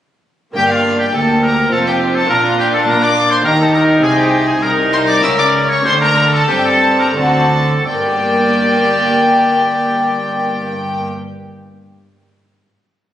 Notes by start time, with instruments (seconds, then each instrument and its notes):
0.53 double bass section G1, cello section G2, lute G2 A#3 D4, viola section A#3, violin section D4 G5
0.57 oboe G4
0.70 oboe F4, violin section F5
0.99 oboe G4, violin section G5
1.13 cello section D2, double bass section D2, lute D2, viola section A#3, violin section G4 A5, oboe A4
1.43 oboe A#4, violin section A#5
1.68 cello section F2, lute C4 F4, viola section C4, violin section A5
1.72 double bass section F1, lute F2, violin section F4, oboe A4
1.87 oboe G4, violin section G5
2.16 oboe A4, violin section A5
2.26 cello section A#2, lute A#2 A#3 D4 F4, viola section D4, oboe A#4
2.30 double bass section A#1, violin section F4 A#5
2.59 oboe G4, violin section G5
2.74 oboe A4, violin section A5
2.87 double bass section A#2, cello section A#3, lute A#3, violin section F4 A#5, oboe A#4
3.03 oboe D5, violin section D6
3.31 oboe C5, violin section C6
3.41 cello section D#3, lute A#3 D#4 G4, oboe A#4, violin section A#5
3.45 double bass section D#2, lute D#3, viola section D#4, violin section G4
3.60 oboe A4, violin section A5
3.74 oboe A#4, violin section A#5
4.00 cello section C3, lute C4 D#4 G#4, oboe G#4, violin section G#5
4.04 double bass section C2, lute C3, violin section G#4
4.17 oboe G4, violin section G5
4.47 oboe G#4, violin section G#5
4.62 double bass section C2, cello section C2, viola section D#4, oboe A#4, violin section A#4 A#5
4.92 oboe C5, violin section C6
5.08 oboe D5, violin section D6
5.20 lute A#3 E4 G4, violin section E6
5.24 double bass section C#2, lute C#3, cello section C#3, viola section C#4, oboe E5
5.39 oboe D5, violin section D6
5.69 oboe C#5, violin section C#6
5.82 double bass section D2, lute A3 D4 G4, viola section A3, oboe C5
5.86 cello section D3, lute D3, violin section A4 C6
6.00 oboe A#4, violin section A#5
6.33 oboe A4, violin section A5
6.48 double bass section G2, cello section G3, lute G3, viola section C4, oboe G4, violin section G5
6.65 oboe A4, violin section A5
7.00 oboe A#4, violin section A#5
7.12 lute A3 C4 F#4, oboe A4
7.17 double bass section D2, cello section D3, lute D3, viola section C4, violin section F#4 A5
7.86 double bass section G1, cello section G2, lute G3, viola section A#3, violin section G4 G5, oboe D5
7.94 lute A#3
8.01 lute D4
8.08 lute G4
8.15 lute D5